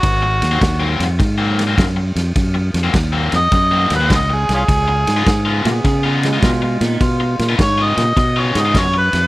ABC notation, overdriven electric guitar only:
X:1
M:4/4
L:1/16
Q:"Swing" 1/4=103
K:Db
V:1 name="Overdriven electric guitar"
z3 [A,,G,B,C] z [A,,G,B,C] z3 [A,,G,B,C] z [A,,G,B,C] z4 | z3 [A,,G,B,C] z [A,,G,B,C] z3 [A,,G,B,C] z [A,,G,B,C] z4 | z3 [D,_CEF] z [D,CEF] z3 [D,CEF] z [D,CEF] z4 | z3 [D,_CEF] z [D,CEF] z3 [D,CEF] z [D,CEF] z4 |]